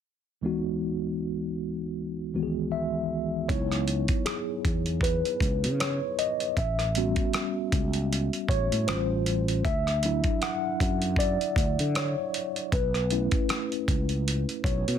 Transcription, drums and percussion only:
3.49 kick, closed hi-hat
3.72 cross-stick, closed hi-hat
3.88 closed hi-hat
4.08 kick, closed hi-hat
4.26 cross-stick, closed hi-hat
4.65 kick, closed hi-hat
4.86 closed hi-hat
5.01 kick, closed hi-hat
5.25 closed hi-hat
5.40 kick, closed hi-hat
5.64 closed hi-hat
5.80 cross-stick, closed hi-hat
6.19 closed hi-hat
6.40 closed hi-hat
6.57 kick, closed hi-hat
6.79 cross-stick, closed hi-hat
6.95 closed hi-hat
7.16 kick, closed hi-hat
7.33 cross-stick, closed hi-hat
7.72 kick, closed hi-hat
7.93 closed hi-hat
8.13 closed hi-hat
8.33 closed hi-hat
8.48 kick, closed hi-hat
8.72 closed hi-hat
8.88 cross-stick, closed hi-hat
9.26 closed hi-hat
9.48 closed hi-hat
9.65 kick, closed hi-hat
9.87 cross-stick, closed hi-hat
10.03 closed hi-hat
10.24 kick, closed hi-hat
10.42 cross-stick, closed hi-hat
10.80 kick, closed hi-hat
11.02 closed hi-hat
11.16 kick, closed hi-hat
11.41 closed hi-hat
11.56 kick, closed hi-hat
11.79 closed hi-hat
11.95 cross-stick, closed hi-hat
12.34 closed hi-hat
12.56 closed hi-hat
12.72 kick, closed hi-hat
12.94 cross-stick, closed hi-hat
13.11 closed hi-hat
13.31 kick, closed hi-hat
13.49 cross-stick, closed hi-hat
13.72 closed hi-hat
13.88 kick, closed hi-hat
14.09 closed hi-hat
14.28 closed hi-hat
14.49 closed hi-hat
14.64 kick, closed hi-hat
14.88 closed hi-hat

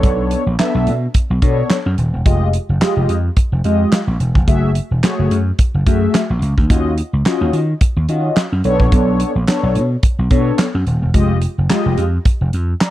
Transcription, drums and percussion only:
0.03 kick, closed hi-hat
0.31 closed hi-hat
0.59 snare, clap, closed hi-hat
0.87 closed hi-hat
1.14 kick, closed hi-hat
1.42 kick, closed hi-hat
1.70 snare, clap, closed hi-hat
1.98 closed hi-hat
2.26 kick, closed hi-hat
2.53 closed hi-hat
2.81 snare, clap, closed hi-hat
3.09 closed hi-hat
3.37 kick, closed hi-hat
3.64 closed hi-hat
3.92 snare, clap, closed hi-hat
4.20 closed hi-hat
4.35 kick
4.48 kick, closed hi-hat
4.75 closed hi-hat
5.03 snare, clap, closed hi-hat
5.31 closed hi-hat
5.59 kick, closed hi-hat
5.87 kick, closed hi-hat
6.14 snare, clap, closed hi-hat
6.42 closed hi-hat
6.58 kick
6.70 kick, closed hi-hat
6.98 closed hi-hat
7.25 snare, clap, closed hi-hat
7.53 closed hi-hat
7.81 kick, closed hi-hat
8.09 closed hi-hat
8.36 snare, clap, closed hi-hat
8.64 closed hi-hat
8.80 kick
8.92 kick, closed hi-hat
9.20 closed hi-hat
9.47 snare, clap, closed hi-hat
9.75 closed hi-hat
10.03 kick, closed hi-hat
10.31 kick, closed hi-hat
10.59 snare, clap, closed hi-hat
10.87 closed hi-hat
11.14 kick, closed hi-hat
11.42 closed hi-hat
11.69 snare, clap, closed hi-hat
11.98 closed hi-hat
12.25 kick, closed hi-hat
12.53 closed hi-hat
12.81 snare, clap, closed hi-hat

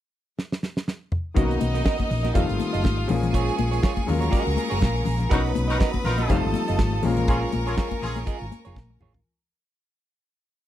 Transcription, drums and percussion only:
0.39 snare
0.52 snare
0.63 snare
0.77 snare
0.88 snare
1.12 mid tom
1.36 kick, closed hi-hat
1.51 closed hi-hat
1.61 closed hi-hat, muted conga, high conga
1.75 closed hi-hat
1.86 kick, snare, muted conga
1.99 kick, closed hi-hat, high conga
2.11 open hi-hat, muted conga, low conga
2.24 snare, closed hi-hat, high conga
2.35 kick, closed hi-hat, muted conga
2.49 closed hi-hat
2.60 closed hi-hat, high conga
2.74 closed hi-hat
2.84 kick, snare, muted conga, high conga
3.09 open hi-hat, muted conga, low conga
3.23 closed hi-hat, low conga
3.34 kick, closed hi-hat, muted conga
3.49 closed hi-hat
3.59 closed hi-hat, muted conga, high conga
3.73 closed hi-hat
3.83 kick, snare, muted conga
3.97 kick, closed hi-hat, high conga
4.08 open hi-hat, muted conga, low conga
4.22 snare, closed hi-hat, high conga
4.32 kick, closed hi-hat, muted conga
4.47 closed hi-hat
4.57 closed hi-hat, high conga
4.71 closed hi-hat
4.81 kick, snare, high conga
4.96 closed hi-hat
5.05 open hi-hat, muted conga, low conga
5.20 closed hi-hat, low conga
5.31 kick, closed hi-hat
5.46 closed hi-hat
5.55 closed hi-hat, muted conga, high conga
5.70 closed hi-hat
5.81 kick, snare
5.94 kick, closed hi-hat, high conga
6.04 open hi-hat, muted conga, low conga
6.18 closed hi-hat, high conga
6.29 kick, closed hi-hat, muted conga
6.54 closed hi-hat, muted conga, high conga
6.68 closed hi-hat
6.78 kick, snare, high conga
7.03 open hi-hat, muted conga, low conga
7.17 closed hi-hat, low conga
7.28 kick, closed hi-hat, muted conga
7.52 closed hi-hat, muted conga, high conga
7.67 closed hi-hat
7.77 kick, snare, muted conga
7.91 kick, closed hi-hat, high conga
8.02 open hi-hat, low conga
8.16 snare, closed hi-hat, high conga
8.27 kick, closed hi-hat, muted conga
8.52 closed hi-hat, high conga
8.65 closed hi-hat
8.76 kick, snare, muted conga, high conga
8.90 high conga
9.01 mid tom, muted conga, low conga
9.14 floor tom, low conga

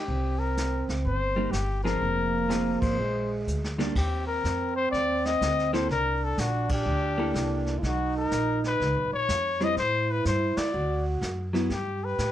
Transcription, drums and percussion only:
0.08 brush sweep
0.57 snare, hi-hat pedal
0.89 snare
1.05 brush sweep, kick
1.53 snare, hi-hat pedal
1.86 snare
2.02 brush sweep, kick
2.50 snare, hi-hat pedal
2.82 kick, ride
2.99 brush sweep
3.47 hi-hat pedal
3.64 snare
3.80 snare
3.96 brush sweep, kick, snare, crash
4.44 kick, snare, hi-hat pedal
4.93 brush sweep, kick, snare
5.25 snare
5.41 kick, snare, hi-hat pedal
5.58 snare
5.74 snare
5.89 brush sweep, kick, snare
6.38 kick, snare, hi-hat pedal
6.69 kick, ride
6.86 brush sweep
7.35 kick, snare, hi-hat pedal
7.66 snare
7.83 brush sweep, kick, snare
8.31 kick, snare, hi-hat pedal
8.64 snare
8.80 brush sweep, kick, snare
9.29 kick, snare, hi-hat pedal
9.60 snare
9.77 brush sweep, kick, snare
10.25 kick, snare, hi-hat pedal
10.57 snare, ride
10.73 brush sweep
11.22 kick, snare, hi-hat pedal
11.54 snare
11.70 brush sweep, kick, snare
12.18 kick, snare, hi-hat pedal

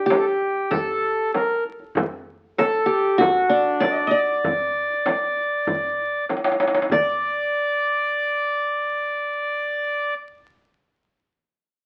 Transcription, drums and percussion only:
0.10 darbuka tek, frame drum
0.26 darbuka ka
0.71 darbuka dum, frame drum
0.88 darbuka ka
1.04 darbuka ka
1.34 darbuka tek, frame drum
1.65 darbuka ka
1.79 darbuka ka
1.95 darbuka dum, frame drum
2.58 darbuka tek, frame drum
2.74 darbuka ka
2.89 darbuka ka
3.21 frame drum, darbuka dum
3.37 darbuka ka
3.52 darbuka ka
3.81 darbuka tek, frame drum
4.14 darbuka ka
4.29 darbuka ka
4.44 darbuka dum, frame drum
4.90 darbuka ka
5.06 darbuka tek, frame drum
5.20 darbuka ka
5.37 darbuka ka
5.67 frame drum, darbuka dum
5.83 darbuka ka
5.99 darbuka ka
6.29 darbuka tek, frame drum
6.37 darbuka ka
6.44 darbuka tek
6.52 darbuka ka
6.60 darbuka tek
6.68 darbuka ka
6.75 darbuka tek
6.82 darbuka ka
6.90 darbuka dum, frame drum

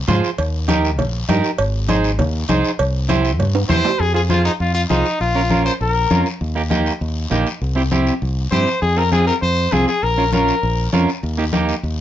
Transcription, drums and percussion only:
0.08 cowbell, high conga, low conga, short guiro
0.24 short guiro
0.38 cowbell, high conga, long guiro
0.69 cowbell, high conga, short guiro
0.85 short guiro
0.99 cowbell, high conga, low conga, long guiro
1.29 cowbell, high conga, low timbale, short guiro
1.44 short guiro
1.58 cowbell, high conga, long guiro
1.89 cowbell, high conga, short guiro
2.04 short guiro
2.19 cowbell, high conga, low conga, long guiro
2.49 cowbell, high conga, short guiro
2.65 short guiro
2.79 cowbell, high conga, long guiro
3.09 cowbell, high conga, short guiro
3.25 short guiro
3.40 cowbell, high conga, low conga, long guiro
3.55 high timbale
3.70 cowbell, high conga, low conga, short guiro
3.85 low timbale, short guiro
3.99 high conga, long guiro
4.30 high conga, short guiro
4.45 short guiro
4.60 high conga, long guiro
4.90 high conga, short guiro
5.06 short guiro
5.20 high conga, long guiro
5.50 high conga, short guiro
5.66 short guiro
5.81 high conga, long guiro
6.11 high conga, short guiro
6.26 short guiro
6.41 high conga, long guiro
6.71 high conga, short guiro
6.86 short guiro
7.01 high conga, long guiro
7.31 high conga, short guiro
7.47 short guiro
7.62 high conga, long guiro
7.92 high conga, short guiro
8.07 short guiro
8.22 high conga, long guiro
8.52 high conga, short guiro
8.67 short guiro
8.82 high conga, long guiro
9.12 high conga, short guiro
9.28 short guiro
9.42 high conga, long guiro
9.72 high conga, short guiro
9.88 short guiro
10.03 high conga, long guiro
10.33 high conga, short guiro
10.48 short guiro
10.63 high conga, long guiro
10.93 high conga, short guiro
11.09 short guiro
11.23 high conga, long guiro
11.53 high conga, short guiro
11.69 short guiro
11.83 high conga, long guiro

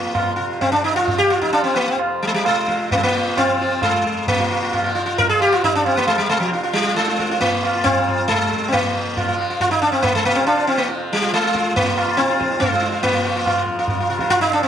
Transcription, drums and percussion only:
0.15 tabla na, tabla ge
0.61 tabla tin, tabla ge
1.08 tabla tin, tabla ge
1.30 tabla na
1.42 tabla ke
1.53 tabla na
1.99 tabla na
2.45 tabla na
2.68 tabla ke
2.91 tabla tin, tabla ge
3.37 tabla na, tabla ge
3.59 tabla te
3.82 tabla na, tabla ge
4.05 tabla ge
4.28 tabla tin, tabla ge
4.73 tabla na, tabla ge
4.96 tabla te
5.18 tabla tin, tabla ge
5.41 tabla na
5.64 tabla tin, tabla ge
5.85 tabla na
6.07 tabla na
6.30 tabla na
6.52 tabla te
6.74 tabla te
6.97 tabla te
7.08 tabla te
7.19 tabla ke
7.30 tabla te
7.41 tabla tin, tabla ge
7.64 tabla na
7.86 tabla na, tabla ge
8.08 tabla ge
8.30 tabla na, tabla ge
8.52 tabla ge
8.73 tabla tin, tabla ge
9.17 tabla na, tabla ge
9.60 tabla tin, tabla ge
9.82 tabla na
10.04 tabla tin, tabla ge
10.26 tabla na
10.36 tabla ke
10.47 tabla na
10.69 tabla na
10.91 tabla te
11.12 tabla te
11.34 tabla na
11.55 tabla ke
11.76 tabla tin, tabla ge
11.98 tabla na
12.19 tabla te
12.30 tabla te
12.41 tabla ke
12.51 tabla te
12.62 tabla na, tabla ge
12.83 tabla te
13.04 tabla tin, tabla ge
13.46 tabla na, tabla ge
13.67 tabla ge
13.88 tabla tin, tabla ge
14.09 tabla na
14.19 tabla ke
14.30 tabla tin, tabla ge
14.51 tabla na

